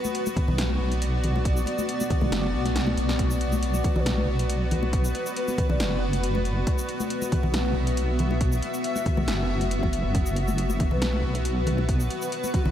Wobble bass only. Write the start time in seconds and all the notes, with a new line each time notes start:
0.48 B1
0.80 B1
2.22 B1
2.32 F#1
2.54 B1
2.97 B1
3.96 B1
4.28 B1
5.70 B1
5.80 F#1
7.44 B1
7.76 B1
9.17 B1
9.28 F#1
10.04 F#1
10.91 B1
11.23 B1
12.65 B1